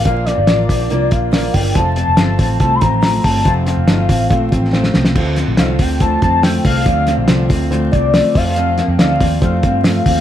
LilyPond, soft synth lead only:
\new Staff \with { instrumentName = "Soft synth lead" } { \time 4/4 \key f \major \tempo 4 = 141 f''8 d''2 f''4 g''8 | a''8 a''8 a''4 \tuplet 3/2 { a''8 c'''16 bes''8.~ } bes''8 a''8 | a''8 f''2. r8 | r4 f''8 g''8 a''8 a''8 g''8 f''8~ |
f''4. r4 d''4 f''8~ | f''4 f''4 f''2 | }